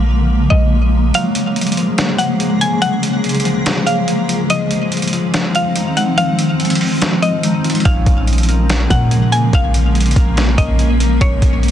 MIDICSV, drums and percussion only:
0, 0, Header, 1, 2, 480
1, 0, Start_track
1, 0, Tempo, 419580
1, 1306, Time_signature, 4, 2, 24, 8
1, 13399, End_track
2, 0, Start_track
2, 0, Title_t, "Drums"
2, 1307, Note_on_c, 9, 42, 75
2, 1421, Note_off_c, 9, 42, 0
2, 1545, Note_on_c, 9, 42, 76
2, 1660, Note_off_c, 9, 42, 0
2, 1787, Note_on_c, 9, 42, 55
2, 1847, Note_off_c, 9, 42, 0
2, 1847, Note_on_c, 9, 42, 53
2, 1907, Note_off_c, 9, 42, 0
2, 1907, Note_on_c, 9, 42, 53
2, 1967, Note_off_c, 9, 42, 0
2, 1967, Note_on_c, 9, 42, 53
2, 2029, Note_off_c, 9, 42, 0
2, 2029, Note_on_c, 9, 42, 69
2, 2144, Note_off_c, 9, 42, 0
2, 2265, Note_on_c, 9, 42, 70
2, 2270, Note_on_c, 9, 38, 120
2, 2380, Note_off_c, 9, 42, 0
2, 2385, Note_off_c, 9, 38, 0
2, 2506, Note_on_c, 9, 42, 66
2, 2621, Note_off_c, 9, 42, 0
2, 2745, Note_on_c, 9, 42, 76
2, 2860, Note_off_c, 9, 42, 0
2, 2989, Note_on_c, 9, 42, 71
2, 3103, Note_off_c, 9, 42, 0
2, 3227, Note_on_c, 9, 42, 74
2, 3342, Note_off_c, 9, 42, 0
2, 3467, Note_on_c, 9, 42, 82
2, 3581, Note_off_c, 9, 42, 0
2, 3707, Note_on_c, 9, 42, 57
2, 3766, Note_off_c, 9, 42, 0
2, 3766, Note_on_c, 9, 42, 54
2, 3827, Note_off_c, 9, 42, 0
2, 3827, Note_on_c, 9, 42, 53
2, 3887, Note_off_c, 9, 42, 0
2, 3887, Note_on_c, 9, 42, 52
2, 3950, Note_off_c, 9, 42, 0
2, 3950, Note_on_c, 9, 42, 68
2, 4064, Note_off_c, 9, 42, 0
2, 4187, Note_on_c, 9, 42, 75
2, 4192, Note_on_c, 9, 38, 109
2, 4302, Note_off_c, 9, 42, 0
2, 4307, Note_off_c, 9, 38, 0
2, 4427, Note_on_c, 9, 42, 66
2, 4542, Note_off_c, 9, 42, 0
2, 4666, Note_on_c, 9, 42, 78
2, 4780, Note_off_c, 9, 42, 0
2, 4909, Note_on_c, 9, 42, 69
2, 5024, Note_off_c, 9, 42, 0
2, 5147, Note_on_c, 9, 42, 75
2, 5261, Note_off_c, 9, 42, 0
2, 5385, Note_on_c, 9, 42, 84
2, 5499, Note_off_c, 9, 42, 0
2, 5626, Note_on_c, 9, 42, 53
2, 5686, Note_off_c, 9, 42, 0
2, 5686, Note_on_c, 9, 42, 54
2, 5746, Note_off_c, 9, 42, 0
2, 5746, Note_on_c, 9, 42, 54
2, 5806, Note_off_c, 9, 42, 0
2, 5806, Note_on_c, 9, 42, 51
2, 5868, Note_off_c, 9, 42, 0
2, 5868, Note_on_c, 9, 42, 73
2, 5983, Note_off_c, 9, 42, 0
2, 6106, Note_on_c, 9, 42, 71
2, 6111, Note_on_c, 9, 38, 119
2, 6220, Note_off_c, 9, 42, 0
2, 6225, Note_off_c, 9, 38, 0
2, 6347, Note_on_c, 9, 42, 69
2, 6461, Note_off_c, 9, 42, 0
2, 6585, Note_on_c, 9, 42, 75
2, 6699, Note_off_c, 9, 42, 0
2, 6828, Note_on_c, 9, 42, 72
2, 6943, Note_off_c, 9, 42, 0
2, 7066, Note_on_c, 9, 42, 76
2, 7181, Note_off_c, 9, 42, 0
2, 7306, Note_on_c, 9, 42, 83
2, 7420, Note_off_c, 9, 42, 0
2, 7548, Note_on_c, 9, 42, 39
2, 7607, Note_off_c, 9, 42, 0
2, 7607, Note_on_c, 9, 42, 50
2, 7667, Note_off_c, 9, 42, 0
2, 7667, Note_on_c, 9, 42, 57
2, 7727, Note_off_c, 9, 42, 0
2, 7727, Note_on_c, 9, 42, 67
2, 7790, Note_on_c, 9, 46, 49
2, 7841, Note_off_c, 9, 42, 0
2, 7904, Note_off_c, 9, 46, 0
2, 8026, Note_on_c, 9, 42, 75
2, 8031, Note_on_c, 9, 38, 109
2, 8141, Note_off_c, 9, 42, 0
2, 8146, Note_off_c, 9, 38, 0
2, 8266, Note_on_c, 9, 42, 66
2, 8380, Note_off_c, 9, 42, 0
2, 8505, Note_on_c, 9, 42, 79
2, 8619, Note_off_c, 9, 42, 0
2, 8746, Note_on_c, 9, 42, 60
2, 8805, Note_off_c, 9, 42, 0
2, 8805, Note_on_c, 9, 42, 56
2, 8866, Note_off_c, 9, 42, 0
2, 8866, Note_on_c, 9, 42, 54
2, 8926, Note_off_c, 9, 42, 0
2, 8926, Note_on_c, 9, 42, 57
2, 8986, Note_off_c, 9, 42, 0
2, 8986, Note_on_c, 9, 36, 123
2, 8986, Note_on_c, 9, 42, 77
2, 9100, Note_off_c, 9, 42, 0
2, 9101, Note_off_c, 9, 36, 0
2, 9225, Note_on_c, 9, 42, 80
2, 9226, Note_on_c, 9, 36, 91
2, 9340, Note_off_c, 9, 42, 0
2, 9341, Note_off_c, 9, 36, 0
2, 9466, Note_on_c, 9, 42, 54
2, 9526, Note_off_c, 9, 42, 0
2, 9526, Note_on_c, 9, 42, 53
2, 9587, Note_off_c, 9, 42, 0
2, 9587, Note_on_c, 9, 42, 52
2, 9647, Note_off_c, 9, 42, 0
2, 9647, Note_on_c, 9, 42, 53
2, 9709, Note_off_c, 9, 42, 0
2, 9709, Note_on_c, 9, 42, 71
2, 9823, Note_off_c, 9, 42, 0
2, 9947, Note_on_c, 9, 42, 71
2, 9952, Note_on_c, 9, 38, 114
2, 10061, Note_off_c, 9, 42, 0
2, 10067, Note_off_c, 9, 38, 0
2, 10185, Note_on_c, 9, 36, 84
2, 10187, Note_on_c, 9, 42, 68
2, 10299, Note_off_c, 9, 36, 0
2, 10301, Note_off_c, 9, 42, 0
2, 10425, Note_on_c, 9, 42, 74
2, 10539, Note_off_c, 9, 42, 0
2, 10668, Note_on_c, 9, 42, 69
2, 10782, Note_off_c, 9, 42, 0
2, 10906, Note_on_c, 9, 36, 118
2, 10906, Note_on_c, 9, 42, 75
2, 11020, Note_off_c, 9, 36, 0
2, 11020, Note_off_c, 9, 42, 0
2, 11145, Note_on_c, 9, 42, 79
2, 11259, Note_off_c, 9, 42, 0
2, 11385, Note_on_c, 9, 42, 54
2, 11446, Note_off_c, 9, 42, 0
2, 11446, Note_on_c, 9, 42, 55
2, 11506, Note_off_c, 9, 42, 0
2, 11506, Note_on_c, 9, 42, 52
2, 11566, Note_off_c, 9, 42, 0
2, 11566, Note_on_c, 9, 42, 55
2, 11626, Note_on_c, 9, 36, 97
2, 11629, Note_off_c, 9, 42, 0
2, 11629, Note_on_c, 9, 42, 72
2, 11740, Note_off_c, 9, 36, 0
2, 11743, Note_off_c, 9, 42, 0
2, 11866, Note_on_c, 9, 42, 76
2, 11871, Note_on_c, 9, 38, 115
2, 11981, Note_off_c, 9, 42, 0
2, 11986, Note_off_c, 9, 38, 0
2, 12105, Note_on_c, 9, 36, 84
2, 12106, Note_on_c, 9, 42, 69
2, 12219, Note_off_c, 9, 36, 0
2, 12220, Note_off_c, 9, 42, 0
2, 12345, Note_on_c, 9, 42, 75
2, 12459, Note_off_c, 9, 42, 0
2, 12588, Note_on_c, 9, 42, 69
2, 12702, Note_off_c, 9, 42, 0
2, 12826, Note_on_c, 9, 36, 119
2, 12826, Note_on_c, 9, 42, 73
2, 12940, Note_off_c, 9, 36, 0
2, 12940, Note_off_c, 9, 42, 0
2, 13066, Note_on_c, 9, 36, 93
2, 13066, Note_on_c, 9, 42, 78
2, 13180, Note_off_c, 9, 36, 0
2, 13180, Note_off_c, 9, 42, 0
2, 13307, Note_on_c, 9, 42, 54
2, 13399, Note_off_c, 9, 42, 0
2, 13399, End_track
0, 0, End_of_file